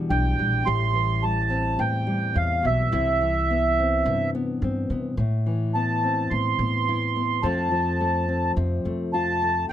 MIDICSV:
0, 0, Header, 1, 4, 480
1, 0, Start_track
1, 0, Tempo, 564440
1, 568, Time_signature, 4, 2, 24, 8
1, 8272, End_track
2, 0, Start_track
2, 0, Title_t, "Accordion"
2, 0, Program_c, 0, 21
2, 87, Note_on_c, 0, 79, 89
2, 560, Note_on_c, 0, 84, 106
2, 582, Note_off_c, 0, 79, 0
2, 1045, Note_on_c, 0, 81, 97
2, 1058, Note_off_c, 0, 84, 0
2, 1529, Note_on_c, 0, 79, 80
2, 1540, Note_off_c, 0, 81, 0
2, 2015, Note_on_c, 0, 77, 86
2, 2022, Note_off_c, 0, 79, 0
2, 2257, Note_off_c, 0, 77, 0
2, 2262, Note_on_c, 0, 76, 84
2, 3659, Note_off_c, 0, 76, 0
2, 4883, Note_on_c, 0, 81, 89
2, 5358, Note_on_c, 0, 84, 86
2, 5378, Note_off_c, 0, 81, 0
2, 6315, Note_on_c, 0, 81, 87
2, 6351, Note_off_c, 0, 84, 0
2, 7246, Note_off_c, 0, 81, 0
2, 7765, Note_on_c, 0, 81, 104
2, 8212, Note_off_c, 0, 81, 0
2, 8242, Note_on_c, 0, 79, 93
2, 8272, Note_off_c, 0, 79, 0
2, 8272, End_track
3, 0, Start_track
3, 0, Title_t, "Nylon-string guitar"
3, 0, Program_c, 1, 24
3, 0, Note_on_c, 1, 40, 62
3, 0, Note_on_c, 1, 47, 63
3, 0, Note_on_c, 1, 52, 55
3, 0, Note_on_c, 1, 55, 56
3, 0, Note_on_c, 1, 67, 61
3, 89, Note_on_c, 1, 62, 55
3, 329, Note_off_c, 1, 55, 0
3, 333, Note_on_c, 1, 55, 58
3, 539, Note_off_c, 1, 62, 0
3, 541, Note_off_c, 1, 47, 0
3, 559, Note_on_c, 1, 45, 71
3, 561, Note_off_c, 1, 67, 0
3, 564, Note_on_c, 1, 67, 61
3, 569, Note_off_c, 1, 40, 0
3, 791, Note_off_c, 1, 52, 0
3, 794, Note_on_c, 1, 52, 61
3, 1040, Note_off_c, 1, 55, 0
3, 1044, Note_on_c, 1, 55, 55
3, 1276, Note_on_c, 1, 60, 57
3, 1519, Note_on_c, 1, 40, 63
3, 1522, Note_off_c, 1, 45, 0
3, 1749, Note_off_c, 1, 55, 0
3, 1759, Note_on_c, 1, 55, 57
3, 1989, Note_on_c, 1, 45, 60
3, 2232, Note_off_c, 1, 45, 0
3, 2235, Note_on_c, 1, 47, 62
3, 2455, Note_off_c, 1, 67, 0
3, 2477, Note_off_c, 1, 47, 0
3, 2480, Note_on_c, 1, 48, 64
3, 2482, Note_off_c, 1, 40, 0
3, 2490, Note_on_c, 1, 64, 60
3, 2723, Note_off_c, 1, 48, 0
3, 2725, Note_off_c, 1, 52, 0
3, 2729, Note_on_c, 1, 52, 57
3, 2962, Note_off_c, 1, 55, 0
3, 2981, Note_on_c, 1, 59, 54
3, 3007, Note_off_c, 1, 60, 0
3, 3227, Note_on_c, 1, 60, 57
3, 3457, Note_on_c, 1, 43, 61
3, 3687, Note_off_c, 1, 59, 0
3, 3697, Note_on_c, 1, 59, 55
3, 3932, Note_off_c, 1, 60, 0
3, 3942, Note_on_c, 1, 60, 55
3, 4166, Note_off_c, 1, 59, 0
3, 4176, Note_on_c, 1, 59, 55
3, 4377, Note_off_c, 1, 52, 0
3, 4381, Note_off_c, 1, 59, 0
3, 4382, Note_off_c, 1, 43, 0
3, 4385, Note_off_c, 1, 60, 0
3, 4412, Note_on_c, 1, 45, 64
3, 4646, Note_on_c, 1, 52, 56
3, 4892, Note_on_c, 1, 59, 54
3, 5137, Note_on_c, 1, 60, 53
3, 5368, Note_off_c, 1, 45, 0
3, 5369, Note_on_c, 1, 40, 56
3, 5608, Note_off_c, 1, 59, 0
3, 5618, Note_on_c, 1, 59, 56
3, 5847, Note_off_c, 1, 64, 0
3, 5857, Note_on_c, 1, 64, 62
3, 6083, Note_off_c, 1, 59, 0
3, 6093, Note_on_c, 1, 59, 54
3, 6297, Note_off_c, 1, 52, 0
3, 6300, Note_off_c, 1, 59, 0
3, 6312, Note_off_c, 1, 40, 0
3, 6315, Note_on_c, 1, 41, 67
3, 6322, Note_on_c, 1, 53, 57
3, 6326, Note_on_c, 1, 57, 55
3, 6331, Note_off_c, 1, 64, 0
3, 6333, Note_off_c, 1, 60, 0
3, 6336, Note_on_c, 1, 60, 55
3, 6342, Note_on_c, 1, 65, 64
3, 6551, Note_off_c, 1, 53, 0
3, 6561, Note_on_c, 1, 53, 60
3, 6804, Note_off_c, 1, 57, 0
3, 6807, Note_on_c, 1, 57, 62
3, 7043, Note_off_c, 1, 60, 0
3, 7046, Note_on_c, 1, 60, 57
3, 7282, Note_on_c, 1, 48, 60
3, 7527, Note_off_c, 1, 57, 0
3, 7531, Note_on_c, 1, 57, 55
3, 7764, Note_off_c, 1, 65, 0
3, 7774, Note_on_c, 1, 65, 61
3, 8006, Note_off_c, 1, 57, 0
3, 8009, Note_on_c, 1, 57, 55
3, 8212, Note_off_c, 1, 41, 0
3, 8215, Note_off_c, 1, 48, 0
3, 8215, Note_off_c, 1, 53, 0
3, 8221, Note_off_c, 1, 65, 0
3, 8241, Note_on_c, 1, 40, 69
3, 8272, Note_off_c, 1, 40, 0
3, 8272, Note_off_c, 1, 57, 0
3, 8272, Note_off_c, 1, 60, 0
3, 8272, End_track
4, 0, Start_track
4, 0, Title_t, "Upright bass"
4, 0, Program_c, 2, 32
4, 88, Note_on_c, 2, 35, 89
4, 316, Note_off_c, 2, 35, 0
4, 331, Note_on_c, 2, 34, 74
4, 557, Note_off_c, 2, 34, 0
4, 572, Note_on_c, 2, 33, 91
4, 1495, Note_off_c, 2, 33, 0
4, 1521, Note_on_c, 2, 45, 84
4, 1979, Note_off_c, 2, 45, 0
4, 2003, Note_on_c, 2, 40, 80
4, 2232, Note_off_c, 2, 40, 0
4, 2250, Note_on_c, 2, 35, 79
4, 2476, Note_off_c, 2, 35, 0
4, 2487, Note_on_c, 2, 36, 92
4, 3411, Note_off_c, 2, 36, 0
4, 3448, Note_on_c, 2, 48, 83
4, 3902, Note_off_c, 2, 48, 0
4, 3928, Note_on_c, 2, 43, 78
4, 4154, Note_off_c, 2, 43, 0
4, 4166, Note_on_c, 2, 48, 75
4, 4393, Note_off_c, 2, 48, 0
4, 4400, Note_on_c, 2, 45, 84
4, 5328, Note_off_c, 2, 45, 0
4, 5367, Note_on_c, 2, 45, 79
4, 5594, Note_off_c, 2, 45, 0
4, 5601, Note_on_c, 2, 45, 77
4, 6289, Note_off_c, 2, 45, 0
4, 6320, Note_on_c, 2, 41, 79
4, 7249, Note_off_c, 2, 41, 0
4, 7285, Note_on_c, 2, 41, 84
4, 7513, Note_off_c, 2, 41, 0
4, 7528, Note_on_c, 2, 41, 73
4, 8213, Note_off_c, 2, 41, 0
4, 8272, End_track
0, 0, End_of_file